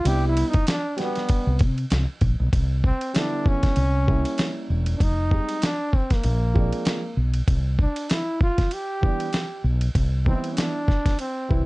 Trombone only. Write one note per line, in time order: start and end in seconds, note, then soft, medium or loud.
0.07 0.27 G4 loud
0.28 0.50 E4 medium
0.49 0.68 D#4 loud
0.69 1.02 D4 medium
1.00 1.61 B3 medium
2.86 3.18 C4 medium
3.17 3.49 D4 medium
3.48 4.70 C#4 loud
4.96 5.04 D4 medium
5.03 5.66 D#4 loud
5.65 5.97 D4 medium
5.96 6.15 C4 medium
6.14 7.18 A#3 medium
7.82 8.13 D4 medium
8.12 8.42 E4 medium
8.43 8.75 F4 medium
8.73 9.65 G4 loud
10.28 10.54 C4 medium
10.53 10.60 C#4 medium
10.58 11.19 D4 loud
11.20 11.66 C4 medium